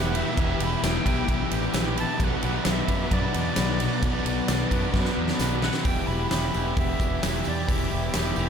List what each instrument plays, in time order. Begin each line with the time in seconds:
Already playing: fingered electric bass E1, overdriven electric guitar E2 B2 E3 B3 E4 G4 B4, distorted electric guitar E2 B2 E3 B3, analog synth pad G4 E5 D6, flute F#5
0.13 distorted electric guitar B2 E3, overdriven electric guitar E4 G4 B4, flute E5, ride
0.17 overdriven electric guitar E2
0.36 fingered electric bass E1, distorted electric guitar E2 B2 E3, overdriven electric guitar E3 B3 E4 G4 B4, kick, ride
0.59 fingered electric bass E1, distorted electric guitar B2 E3, overdriven electric guitar E4 G4 B4, ride
0.63 flute B5
0.82 fingered electric bass E1, distorted electric guitar E2 B2 E3, overdriven electric guitar B3 E4 G4 B4, flute G5, snare, ride, tambourine
1.04 fingered electric bass B1, distorted electric guitar B2 E3, overdriven electric guitar E4 G4 B4, kick, ride
1.28 fingered electric bass B1, distorted electric guitar E2 B2 E3, overdriven electric guitar E3 B3 E4 G4 B4, kick, ride
1.51 fingered electric bass A1, distorted electric guitar B2 E3, overdriven electric guitar E4 G4 B4, ride
1.73 fingered electric bass A#1, distorted electric guitar E2 B2 E3, overdriven electric guitar B3 E4 G4 B4, snare, ride, tambourine
1.97 overdriven electric guitar E2 E4 G4 B4, distorted electric guitar B2 E3, flute A5, ride
2.19 fingered electric bass B1, overdriven electric guitar B2 F#3 B3 D4 F#4 B4, distorted electric guitar B2 F#3, analog synth pad B4 F#5 D6, kick, ride
2.23 distorted electric guitar B3, flute F#5
2.42 fingered electric bass B1, distorted electric guitar B3, overdriven electric guitar B3 D4 F#4 B4, ride
2.46 distorted electric guitar F#3
2.65 fingered electric bass B1, distorted electric guitar B2 F#3, overdriven electric guitar B3 D4 F#4 B4, snare, ride, tambourine
2.70 distorted electric guitar B3, flute E5
2.87 fingered electric bass F#2, overdriven electric guitar B3 D4 F#4 B4, distorted electric guitar B3, kick, ride
2.93 distorted electric guitar F#3
3.10 fingered electric bass F#2, overdriven electric guitar B2 F#3 B3 D4 F#4 B4, distorted electric guitar B2 F#3 B3, flute D5, kick, ride
3.33 fingered electric bass E2, distorted electric guitar B3, overdriven electric guitar B3 D4 F#4 B4, ride
3.38 distorted electric guitar F#3
3.56 fingered electric bass B1, distorted electric guitar B2, overdriven electric guitar B3 D4 F#4 B4, snare, ride, tambourine
3.60 distorted electric guitar F#3 B3
3.79 distorted electric guitar B3, overdriven electric guitar B3 D4 F#4 B4, ride
3.83 overdriven electric guitar B2, distorted electric guitar F#3
4.02 fingered electric bass B1, overdriven electric guitar B2 F#3 B3 D4 F#4 B4, distorted electric guitar B2 F#3 B3, kick, ride
4.25 fingered electric bass B1, distorted electric guitar B3, overdriven electric guitar B3 D4 F#4 B4, ride
4.29 distorted electric guitar F#3
4.47 fingered electric bass B1, distorted electric guitar B2 F#3, overdriven electric guitar B3 D4 F#4 B4, snare, ride, tambourine
4.51 distorted electric guitar B3
4.70 fingered electric bass F#2, distorted electric guitar B3, overdriven electric guitar B3 D4 F#4 B4, kick, ride
4.74 distorted electric guitar F#3
4.93 fingered electric bass F#2, overdriven electric guitar B2 F#3 B3 D4 F#4 B4, distorted electric guitar B2 F#3 B3, kick, snare
5.05 snare
5.15 fingered electric bass E2, distorted electric guitar F#3 B3, overdriven electric guitar B3 D4 F#4 B4
5.28 snare
5.39 fingered electric bass B1, distorted electric guitar B2 F#3 B3, overdriven electric guitar B3 D4 F#4 B4, snare, tambourine
5.62 overdriven electric guitar B2 B3 D4 F#4 B4, distorted electric guitar F#3 B3, flute F#5, snare
5.74 snare
5.83 fingered electric bass E1, distorted electric guitar E2 B2, overdriven electric guitar E3 B3 E4 G4, analog synth pad G4 E5 D6, flute G5, kick, open hi-hat, tambourine
5.88 distorted electric guitar E3
6.07 fingered electric bass E1, distorted electric guitar E3, overdriven electric guitar B3 E4 G4, flute B5, tambourine
6.13 distorted electric guitar B2
6.30 fingered electric bass E1, distorted electric guitar E2, overdriven electric guitar E3 B3 E4 G4, flute B5, snare, open hi-hat, tambourine
6.34 distorted electric guitar B2 E3
6.54 fingered electric bass E1, distorted electric guitar B2 E3, overdriven electric guitar B3 E4 G4, tambourine
6.77 fingered electric bass E1, flute E5, kick, open hi-hat
7.00 fingered electric bass E1, distorted electric guitar B2 E3, kick, tambourine
7.22 fingered electric bass E1, distorted electric guitar E2 B2 E3, overdriven electric guitar E3 B3 E4 G4, snare, open hi-hat, tambourine
7.44 fingered electric bass E2, overdriven electric guitar B3 E4 G4, flute D5, tambourine
7.67 fingered electric bass E1, distorted electric guitar E2 B2 E3, overdriven electric guitar E3 B3 E4 G4, kick, open hi-hat, tambourine
7.73 flute E5
7.91 fingered electric bass E1, distorted electric guitar B2 E3, overdriven electric guitar B3 E4 G4, tambourine
8.14 fingered electric bass E1, distorted electric guitar E2 B2 E3, overdriven electric guitar E3 B3 E4 G4, snare, open hi-hat, tambourine
8.36 fingered electric bass E1, distorted electric guitar B2 E3, overdriven electric guitar B3 E4 G4, tambourine